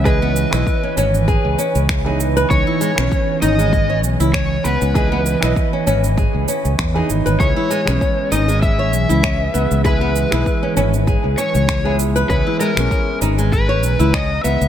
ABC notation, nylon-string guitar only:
X:1
M:4/4
L:1/16
Q:"Swing 16ths" 1/4=98
K:C#dor
V:1 name="Nylon-string guitar"
G B, z E2 C C z G2 C3 G z B | C E G, z C z D G,2 c z E C z B,2 | G B, z E2 C C z G2 C3 G z B | C E G, z C z D G,2 c z E C z B,2 |
G B, z E2 C C z G2 C3 G z B | C E G, z C z D G,2 c z E C z B,2 |]